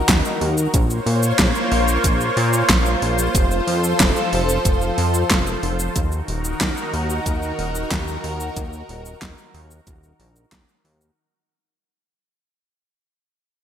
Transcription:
Already playing: analog synth pad D#3 D#4 F#4 A#4
0.09 analog synth bass D#2, kick, snare, clap, closed hi-hat, cabasa
0.25 cabasa
0.41 analog synth bass D#2, open hi-hat
0.58 cabasa
0.74 analog synth bass A#1, analog synth pad A#3 F4 C5 C#5, kick, closed hi-hat, cabasa
0.90 cabasa
1.06 analog synth bass A#2, open hi-hat
1.23 cabasa
1.39 analog synth bass A#1, kick, snare, clap, closed hi-hat, cabasa
1.55 cabasa
1.72 analog synth bass A#1, open hi-hat
1.88 cabasa
2.04 analog synth bass A#1, kick, closed hi-hat, cabasa
2.21 cabasa
2.37 analog synth bass A#2, open hi-hat
2.53 cabasa
2.69 analog synth bass A#1, kick, snare, clap, closed hi-hat, cabasa
2.86 cabasa
3.02 analog synth bass A#1, open hi-hat
3.19 cabasa
3.35 analog synth bass F1, analog synth pad F3 A4, kick, closed hi-hat, cabasa
3.51 cabasa
3.67 analog synth bass F2, open hi-hat
3.84 cabasa
4.00 analog synth bass F1, kick, snare, clap, closed hi-hat, cabasa
4.16 cabasa
4.33 analog synth bass F1, open hi-hat
4.49 cabasa
4.65 analog synth bass F1, kick, closed hi-hat, cabasa
4.82 cabasa
4.98 analog synth bass F2, open hi-hat
5.14 cabasa
5.30 analog synth bass F1, kick, snare, clap, closed hi-hat, cabasa
5.47 cabasa
5.63 analog synth bass F1, open hi-hat
5.79 cabasa
5.96 analog synth bass D#2, analog synth pad D#3 D#4 F#4 A#4, kick, closed hi-hat, cabasa
6.12 cabasa
6.28 analog synth bass D#1, open hi-hat
6.45 cabasa
6.61 analog synth bass D#2, kick, snare, clap, closed hi-hat, cabasa
6.77 cabasa
6.93 analog synth bass D#2, open hi-hat
7.10 cabasa
7.26 analog synth bass D#2, kick, closed hi-hat, cabasa
7.43 cabasa
7.59 analog synth bass D#1, open hi-hat
7.75 cabasa
7.91 analog synth bass D#2, kick, snare, clap, closed hi-hat, cabasa
8.08 cabasa
8.24 analog synth bass D#2, open hi-hat
8.40 cabasa
8.57 analog synth bass D#2, kick, closed hi-hat, cabasa
8.73 cabasa
8.89 analog synth bass D#1, open hi-hat
9.06 cabasa
9.22 analog synth bass D#2, kick, snare, clap, closed hi-hat, cabasa
9.38 cabasa
9.54 analog synth bass D#2, open hi-hat
9.71 cabasa
9.87 analog synth bass D#1, kick, closed hi-hat, cabasa
10.03 cabasa
10.20 analog synth bass A#1, open hi-hat
10.36 cabasa
10.52 analog synth bass D#2, kick, snare, clap, closed hi-hat, cabasa
10.69 cabasa
10.85 analog synth bass D#2, open hi-hat
11.01 cabasa

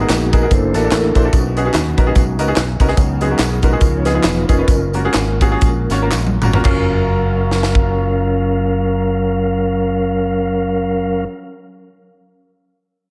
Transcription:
Already playing: upright piano G#2, tonewheel organ A#3 B3 D#4 F#4 G#4
0.00 upright piano B3 D#4 F#4 G#4 A#4
0.09 fingered electric bass A#1, snare, clap, closed hi-hat, tambourine
0.33 upright piano B3 D#4 F#4 G#4 A#4, tonewheel organ A#4, kick, closed hi-hat, tambourine
0.42 upright piano B3 D#4 F#4 G#4 A#4
0.50 fingered electric bass F#1, tonewheel organ A#3 D4 E4 A4 C5, kick, closed hi-hat, tambourine
0.74 fingered electric bass A1, upright piano A#3 D4 E4 F#4 A4, tonewheel organ D4 E4 A#4, snare, closed hi-hat, tambourine
0.84 upright piano A#3 D4 E4 F#4 A4
0.91 fingered electric bass A1, snare, clap, closed hi-hat, tambourine
1.15 fingered electric bass A#1, upright piano A#3 D4 E4 F#4 C5, kick, closed hi-hat, tambourine
1.24 upright piano A#3 D4 E4 F#4 A4
1.33 fingered electric bass B1, upright piano B2, tonewheel organ C#4 D#4 F#4, kick, closed hi-hat, tambourine
1.56 upright piano B3 C#4 D#4 F#4 G#4, closed hi-hat, tambourine
1.65 upright piano B3 C#4 D#4 F#4 G#4
1.74 fingered electric bass D#2, snare, clap, closed hi-hat, tambourine
1.97 fingered electric bass A#1, tonewheel organ G#3 C#4 D#4, upright piano B3 C#4 D#4 F#4 A#4, kick, closed hi-hat, tambourine
2.06 upright piano B3 C#4 D#4 F#4 G#4
2.15 fingered electric bass B1, kick, closed hi-hat, tambourine
2.39 fingered electric bass C#2, upright piano B3 C#4 D#4 F#4 A#4, closed hi-hat, tambourine
2.47 upright piano B3 C#4 D#4 F#4 G#4
2.56 fingered electric bass B1, snare, clap, closed hi-hat, tambourine
2.80 fingered electric bass C2, upright piano B3 C#4 D#4 F#4 A#4, kick, closed hi-hat, tambourine
2.88 upright piano B3 C#4 D#4 F#4 G#4, snare
2.97 fingered electric bass C#2, upright piano C#3, tonewheel organ F#3 B3 D#4, kick, closed hi-hat, tambourine
3.21 upright piano G#3 B3 C#4 F#4 G#4, tonewheel organ B3 G#4, closed hi-hat, tambourine
3.30 upright piano G#3 B3 C#4 F#4 A#4
3.39 fingered electric bass B1, snare, clap, closed hi-hat, tambourine
3.62 upright piano G#3 B3 C#4 F#4 A#4, tonewheel organ D#4 F4 A#4, kick, closed hi-hat, tambourine
3.72 upright piano G#3 B3 C#4 F#4 G#4
3.80 fingered electric bass C#2, upright piano C#3, tonewheel organ F3 B3 D#4, kick, closed hi-hat, tambourine
3.97 tonewheel organ C#5
4.05 upright piano B3 C#4 D#4 F4 G#4, tonewheel organ D#4 F4 B4, snare, closed hi-hat, tambourine
4.14 upright piano B3 C#4 D#4 F4 G#4
4.24 fingered electric bass E1, snare, clap, closed hi-hat, tambourine
4.48 fingered electric bass F1, upright piano B3 C#4 D#4 F4 G#4, tonewheel organ C#4 F4 A#4, kick, closed hi-hat, tambourine
4.58 upright piano B3 C#4 D#4 F4 B4
4.68 fingered electric bass F#1, kick, closed hi-hat, tambourine
4.93 tonewheel organ G#3 A#3 F4, upright piano A#3 C#4 F4 F#4 A#4, closed hi-hat, tambourine
5.04 upright piano A#3 C#4 F4 F#4 G#4
5.14 fingered electric bass G#1, snare, clap, closed hi-hat, tambourine
5.41 upright piano A#3 C#4 F4 F#4 G#4, kick, closed hi-hat, tambourine
5.51 upright piano A#3 C#4 F4 F#4 G#4
5.61 fingered electric bass A#1, kick, closed hi-hat, tambourine
5.90 fingered electric bass G#1, upright piano A#3 C#4 F4 F#4 C#5, snare, closed hi-hat, tambourine
6.02 upright piano A#3 C#4 F4 F#4 A#4
6.12 fingered electric bass A#1, tonewheel organ G#3 A#3 F4, snare, clap, tambourine
6.27 high tom
6.42 fingered electric bass G#1, upright piano A#3 C#4 F4 F#4 A#4, mid tom, tambourine
6.53 upright piano A#3 C#4 F4 F#4 A#4, floor tom
6.63 fingered electric bass F#1, upright piano F#2 C#4 F4 F#4, tonewheel organ F#3 C#4 A#4 F5, kick, clap, crash
6.67 upright piano A#4
7.51 snare
7.63 snare
7.75 kick

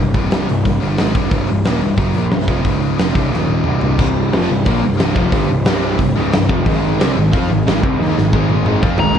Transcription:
0.00 picked electric bass C1, distorted electric guitar C2 G2
0.14 picked electric bass C1, distorted electric guitar C2 G2 C3, kick, open hi-hat
0.31 snare, open hi-hat
0.47 picked electric bass C1, distorted electric guitar C2 G2, open hi-hat
0.65 picked electric bass C1, distorted electric guitar C2 G2, kick, open hi-hat
0.80 picked electric bass G1, distorted electric guitar G2 D3 G3, open hi-hat
0.97 picked electric bass G#1, distorted electric guitar G#2 D#3 G#3, snare, open hi-hat
1.08 snare
1.14 picked electric bass C1, distorted electric guitar C2 G2 C3, kick, open hi-hat
1.31 picked electric bass C1, distorted electric guitar C2 G2 C3, kick, open hi-hat
1.47 picked electric bass C1, distorted electric guitar C2 G2, open hi-hat
1.65 picked electric bass D#1, distorted electric guitar D#2 A#2 D#3, snare, open hi-hat
1.81 picked electric bass C1, distorted electric guitar C2 G2, open hi-hat
1.97 picked electric bass F#1, distorted electric guitar F#2 C#3 F#3, kick, open hi-hat
2.14 picked electric bass A#1, distorted electric guitar A#2 F3 A#3, open hi-hat
2.31 picked electric bass C1, distorted electric guitar C2 G2, snare, open hi-hat
2.48 picked electric bass F1, distorted electric guitar F2 C3 F3, kick, open hi-hat
2.65 picked electric bass C#1, distorted electric guitar C#2 G#2 C#3, kick, open hi-hat
2.82 open hi-hat
2.99 picked electric bass F1, distorted electric guitar F2 C3 F3, snare, open hi-hat
3.14 picked electric bass C1, distorted electric guitar C2 G2 C3, kick, open hi-hat
3.32 picked electric bass D#1, distorted electric guitar D#2 A#2 D#3, snare
3.48 high tom
3.64 picked electric bass C1, distorted electric guitar C2 G2 C3, mid tom
3.81 floor tom
3.98 picked electric bass C1, distorted electric guitar C2 G2 C3, string section D#3 G3 C4 G4 C5, kick, crash
4.32 picked electric bass F1, distorted electric guitar F2 C3 F3, snare, open hi-hat
4.49 picked electric bass C1, distorted electric guitar C2 G2
4.65 picked electric bass A#1, distorted electric guitar A#2 F3 A#3, kick, open hi-hat
4.82 picked electric bass C1, distorted electric guitar C2 G2
4.93 snare
4.97 picked electric bass C1, distorted electric guitar C2 G2 C3, snare, open hi-hat
5.03 distorted electric guitar C2
5.15 picked electric bass F1, distorted electric guitar F2 C3 F3, kick
5.32 picked electric bass G1, distorted electric guitar G2 D3 G3, kick, open hi-hat
5.49 picked electric bass C1, distorted electric guitar C2 G2
5.65 picked electric bass C1, distorted electric guitar C2 G2 C3, snare, open hi-hat
5.98 picked electric bass C1, distorted electric guitar C2 G2, kick, open hi-hat
6.15 picked electric bass C#1, distorted electric guitar C#2 G#2 C#3
6.32 picked electric bass C1, distorted electric guitar C2 G2, snare, open hi-hat
6.48 picked electric bass F1, distorted electric guitar F2 C3 F3, kick
6.66 picked electric bass G#1, distorted electric guitar G#2 D#3 G#3, string section G#3 D#4 G#4 G#5, kick, open hi-hat
6.99 picked electric bass C2, distorted electric guitar C3 G3 C4, snare, open hi-hat
7.17 picked electric bass G#1, distorted electric guitar G#2 D#3
7.33 picked electric bass F2, distorted electric guitar F3 C4 F4, kick, open hi-hat
7.49 picked electric bass G#1, distorted electric guitar G#2 D#3
7.67 picked electric bass G#1, distorted electric guitar G#2 D#3 G#3, snare, open hi-hat
7.83 picked electric bass C2, distorted electric guitar C3 G3 C4, kick
7.99 picked electric bass D#2, distorted electric guitar D#3 A#3 D#4, snare
8.16 picked electric bass G#1, distorted electric guitar G#2 D#3, snare
8.33 picked electric bass G#1, distorted electric guitar G#2 D#3 G#3, kick
8.50 high tom
8.66 picked electric bass G#1, distorted electric guitar G#2 D#3 G#3, mid tom
8.82 picked electric bass F2, distorted electric guitar F3 C4 F4, kick
8.98 picked electric bass G#1, distorted electric guitar G#2 D#3 G#3, lead electric guitar A#5, floor tom
9.15 distorted electric guitar A#2, overdriven electric guitar F3, floor tom

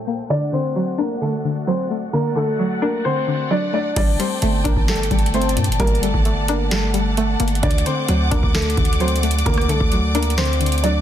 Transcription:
Already playing: string section A#2 A4 C5 G5, synth pluck G3 A3 D4, grand piano A3 A4
0.07 synth pluck A#3
0.30 synth pluck D3, string section A3 F#4 D5 F#5, grand piano D4 D5
0.52 synth pluck D3, grand piano C4 C5
0.76 synth pluck F#3
0.98 grand piano A#3 A#4, synth pluck D4
1.21 synth pluck D3, grand piano A3 A4
1.44 synth pluck D3
1.67 synth pluck F#3, grand piano C4 C5
1.91 synth pluck A3
2.13 synth pluck D3, grand piano A#3 A#4
2.35 synth pluck D3, grand piano A3 A4
2.59 synth pluck F#3
2.82 grand piano A#3 A#4, synth pluck D4
3.05 synth pluck D3, grand piano C4 C5
3.27 synth pluck D3
3.50 synth pluck F#3, grand piano D4 D5
3.73 synth pluck A3, grand piano D4 D5
3.96 808-style bass G1, synth pluck G3, string section A3 D5 G5 A5, grand piano D4 D5, kick, closed hi-hat, crash
4.19 synth pluck G3, grand piano C4 C5, closed hi-hat
4.42 808-style bass G1, synth pluck A3, closed hi-hat
4.64 808-style bass G1, grand piano A#3 A#4, synth pluck D4, kick, closed hi-hat
4.77 808-style bass G1, kick
4.88 synth pluck G3, grand piano A3 A4, snare, closed hi-hat
4.96 closed hi-hat
5.03 closed hi-hat
5.11 808-style bass G1, synth pluck G3, kick, closed hi-hat
5.19 closed hi-hat
5.26 closed hi-hat
5.34 synth pluck A3, grand piano C4 C5, closed hi-hat
5.42 closed hi-hat
5.49 closed hi-hat
5.56 808-style bass G2, synth pluck A#2, closed hi-hat
5.64 closed hi-hat
5.68 808-style bass G1, closed hi-hat
5.80 808-style bass G1, synth pluck G3, grand piano A#3 A#4, string section F#5, kick, closed hi-hat
5.87 closed hi-hat
5.95 closed hi-hat
6.02 synth pluck G3, grand piano A3 A4, closed hi-hat
6.14 808-style bass G1, kick
6.25 synth pluck A3, closed hi-hat
6.48 grand piano A#3 A#4, synth pluck D4, closed hi-hat
6.71 synth pluck G3, grand piano A3 A4, snare, closed hi-hat
6.94 synth pluck G3, closed hi-hat
7.17 synth pluck A3, closed hi-hat
7.40 808-style bass G1, synth pluck A#3, closed hi-hat, open hi-hat
7.48 closed hi-hat
7.55 closed hi-hat
7.63 808-style bass D2, synth pluck D3, grand piano D4 D5, string section D5 D6, kick, closed hi-hat
7.71 closed hi-hat
7.78 closed hi-hat
7.85 synth pluck D3, grand piano C4 C5, closed hi-hat
8.08 808-style bass D2, synth pluck F#3, closed hi-hat
8.31 808-style bass D2, grand piano A#3 A#4, synth pluck D4, kick, closed hi-hat
8.43 808-style bass D2, kick
8.54 synth pluck D3, grand piano A3 A4, snare, closed hi-hat
8.62 closed hi-hat
8.70 closed hi-hat
8.77 808-style bass D2, synth pluck D3, kick, closed hi-hat
8.85 closed hi-hat
8.93 closed hi-hat
9.00 synth pluck F#3, grand piano C4 C5, closed hi-hat
9.08 closed hi-hat
9.16 closed hi-hat
9.23 synth pluck A3, closed hi-hat
9.31 closed hi-hat
9.39 closed hi-hat
9.46 808-style bass D2, synth pluck D3, grand piano A#3 A#4, kick, closed hi-hat
9.54 cross-stick, closed hi-hat
9.61 closed hi-hat
9.68 808-style bass C2, synth pluck D3, grand piano A3 A4, closed hi-hat
9.81 808-style bass D2, kick
9.92 synth pluck F#3, closed hi-hat
10.15 grand piano A#3 A#4, synth pluck D4, closed hi-hat
10.23 closed hi-hat
10.30 closed hi-hat
10.38 synth pluck D3, grand piano C4 C5, snare, closed hi-hat
10.45 closed hi-hat
10.53 closed hi-hat
10.60 synth pluck D3, closed hi-hat
10.66 closed hi-hat
10.72 closed hi-hat
10.78 closed hi-hat
10.83 synth pluck F#3, grand piano D4 D5, closed hi-hat

